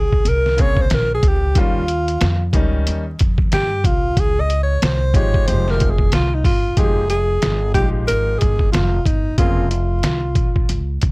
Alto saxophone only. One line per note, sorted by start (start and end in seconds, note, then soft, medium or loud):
0.00 0.30 G#4 medium
0.29 0.63 A#4 loud
0.61 0.83 C#5 loud
0.81 0.96 C5 loud
0.94 1.12 A#4 loud
1.15 1.29 G#4 medium
1.28 1.61 G4 loud
1.60 2.56 F4 medium
3.54 3.88 G4 loud
3.86 4.21 F4 loud
4.19 4.42 G#4 loud
4.40 4.61 D#5 loud
4.63 4.84 C#5 medium
4.83 5.17 C5 loud
5.16 5.49 C#5 loud
5.47 5.72 C5 loud
5.71 5.92 A#4 medium
5.91 6.12 G#4 medium
6.14 6.36 F4 medium
6.34 6.45 D#4 medium
6.45 6.79 F4 medium
6.78 7.10 G#4 loud
7.10 7.71 G#4 medium
7.74 7.89 G4 medium
8.07 8.40 A#4 loud
8.39 8.72 G#4 medium
8.72 9.07 F4 medium
9.06 9.38 D#4 medium
9.39 9.69 F4 medium
9.71 10.97 F4 medium